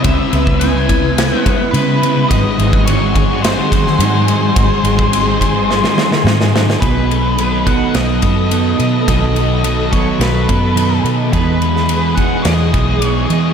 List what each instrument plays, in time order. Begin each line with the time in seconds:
Already playing: string machine E4 B5
0.04 fingered electric bass C#2, clean electric guitar C#3 G#3 B3 E4, distorted electric guitar C#3 G#3 C#4, string machine B4, lead electric guitar E5, kick, ride
0.19 muted clean electric guitar stroke
0.32 fingered electric bass C#2, clean electric guitar C#3 G#3 B3 E4, ride
0.47 distorted electric guitar G#3 C#4, kick
0.60 clean electric guitar C#3 G#3 B3, distorted electric guitar C#3 G#3 C#4, lead electric guitar G#5, ride
0.64 clean electric guitar E4
0.74 distorted electric guitar G#3 C#4, clean electric guitar G#3 B3 E4
0.89 distorted electric guitar C#3 G#3 C#4, kick, ride
1.02 clean electric guitar G#3 B3 E4, muted distorted electric guitar stroke
1.18 snare, ride
1.31 clean electric guitar G#3 B3 E4, distorted electric guitar G#3 C#4
1.41 lead electric guitar F#5
1.46 clean electric guitar C#3 G#3 B3 E4, kick, ride
1.59 clean electric guitar G#3 B3 E4, muted distorted electric guitar stroke
1.71 clean electric guitar C#3 G#3, distorted electric guitar C#3 G#3, fingered electric bass C#3, lead electric guitar B4, ride
1.76 clean electric guitar B3 E4, distorted electric guitar C#4
1.89 clean electric guitar G#3 B3 E4
2.02 distorted electric guitar C#3 G#3 C#4, clean electric guitar C#3 G#3 B3 E4, ride
2.16 distorted electric guitar G#3 C#4
2.29 fingered electric bass G#1, distorted electric guitar G#2 D#3 G#3, clean electric guitar G#2 D#3 F#3 C4, string machine G#4 F#5 C6, lead electric guitar D#5, kick, ride
2.34 clean electric guitar D#4
2.46 muted clean electric guitar stroke
2.58 fingered electric bass G#1, clean electric guitar D#3 F#3 C4 D#4, ride
2.73 distorted electric guitar D#3 G#3, kick
2.86 distorted electric guitar G#2 D#3 G#3, clean electric guitar G#2 D#3 F#3, lead electric guitar C#5, ride
2.90 clean electric guitar C4 D#4
3.00 distorted electric guitar D#3 G#3, clean electric guitar C4 D#4
3.05 clean electric guitar F#3
3.14 distorted electric guitar G#2 D#3 G#3, kick, ride
3.29 clean electric guitar C4 D#4, muted distorted electric guitar stroke
3.33 clean electric guitar F#3
3.42 lead electric guitar C5, snare, ride
3.57 distorted electric guitar D#3 G#3, clean electric guitar C4 D#4
3.61 clean electric guitar F#3
3.72 clean electric guitar D#3 F#3 C4 D#4, kick, ride
3.85 clean electric guitar C4 D#4, muted distorted electric guitar stroke, snare
3.89 clean electric guitar F#3
3.98 distorted electric guitar G#2 D#3 G#3, fingered electric bass G#2, clean electric guitar G#2 D#3 F#3 C4, ride
4.02 clean electric guitar D#4
4.14 clean electric guitar F#3 C4 D#4
4.27 distorted electric guitar G#2 D#3 G#3, clean electric guitar D#3 F#3 C4 D#4, ride
4.42 distorted electric guitar D#3 G#3
4.55 fingered electric bass G#1, clean electric guitar G#2 D#3 F#3 C4 D#4, distorted electric guitar G#2 D#3 G#3, string machine G#5, kick, ride
4.70 muted clean electric guitar stroke
4.83 fingered electric bass G#1, clean electric guitar D#3 F#3 C4 D#4, ride
4.98 distorted electric guitar D#3 G#3, kick
5.10 clean electric guitar G#2 D#3 F#3 C4 D#4, distorted electric guitar G#2 D#3 G#3, ride
5.25 distorted electric guitar D#3 G#3, clean electric guitar F#3 C4 D#4
5.39 distorted electric guitar G#2 D#3 G#3, kick, ride
5.53 clean electric guitar F#3 C4 D#4, muted distorted electric guitar stroke
5.71 snare
5.81 distorted electric guitar D#3 G#3, clean electric guitar C4 D#4, snare
5.85 clean electric guitar F#3
5.95 clean electric guitar D#3 F#3 C4 D#4, snare
6.10 clean electric guitar F#3 C4 D#4, muted distorted electric guitar stroke, snare
6.23 distorted electric guitar G#2 D#3 G#3, clean electric guitar G#2 D#3 F#3 C4 D#4, fingered electric bass G#2, snare
6.38 clean electric guitar F#3 C4 D#4, snare
6.51 distorted electric guitar G#2 D#3 G#3, clean electric guitar D#3 F#3 C4 D#4
6.56 snare
6.66 distorted electric guitar D#3 G#3, snare
6.79 fingered electric bass B1, clean electric guitar B2 D#3 F#3 B3 D#4 A4, distorted electric guitar B2 F#3 B3, string machine A4 D#5 B5, lead electric guitar B4, kick, ride
7.09 distorted electric guitar F#3 B3, ride
7.38 distorted electric guitar B2 F#3 B3, ride
7.64 clean electric guitar B2 D#3 F#3 B3 D#4 A4, distorted electric guitar F#3 B3, lead electric guitar F#5, kick, ride
7.94 fingered electric bass B1, distorted electric guitar B2 F#3 B3, lead electric guitar D#5, snare, ride
8.22 fingered electric bass F#2, distorted electric guitar F#3 B3, kick, ride
8.50 clean electric guitar B2 D#3 F#3 B3 D#4 A4, distorted electric guitar B2 F#3 B3, ride
8.78 fingered electric bass B2, distorted electric guitar F#3 B3, lead electric guitar D#5, ride
9.06 fingered electric bass B1, clean electric guitar B2 D#3 F#3 B3 D#4 A4, distorted electric guitar B2 F#3 B3, lead electric guitar D#5, kick, ride
9.36 distorted electric guitar F#3 B3, ride
9.64 distorted electric guitar B2 F#3 B3, lead electric guitar D#5, ride
9.91 clean electric guitar B2 D#3 F#3 B3 D#4 A4, distorted electric guitar F#3 B3, lead electric guitar C#5, kick, ride
10.20 fingered electric bass B1, distorted electric guitar B2 F#3 B3, lead electric guitar B4, snare, ride
10.49 fingered electric bass F#2, distorted electric guitar F#3 B3, kick, ride
10.75 clean electric guitar B2 D#3 F#3 B3 D#4 A4, distorted electric guitar B2 F#3 B3, ride
11.04 fingered electric bass B2, distorted electric guitar F#3 B3, ride
11.31 distorted electric guitar E2 B2 E3, fingered electric bass E2, clean electric guitar E3 G#3 B3 D#4 G#4, string machine G#4 G#5 D#6, lead electric guitar B4, kick, ride
11.60 distorted electric guitar B2 E3, ride
11.76 snare
11.88 distorted electric guitar E2 B2 E3, ride
12.15 distorted electric guitar B2 E3, clean electric guitar G#3 B3 D#4 G#4, lead electric guitar F#5, kick, ride
12.20 clean electric guitar E3
12.42 distorted electric guitar E2, fingered electric bass E2, lead electric guitar D#5, snare, ride
12.46 distorted electric guitar B2 E3
12.73 fingered electric bass B1, distorted electric guitar B2 E3, kick, ride
13.01 distorted electric guitar E2 B2 E3, clean electric guitar E3 G#3 B3 D#4 G#4, ride
13.06 lead electric guitar C#5
13.28 fingered electric bass E3, distorted electric guitar E3, lead electric guitar D#5, ride
13.33 distorted electric guitar B2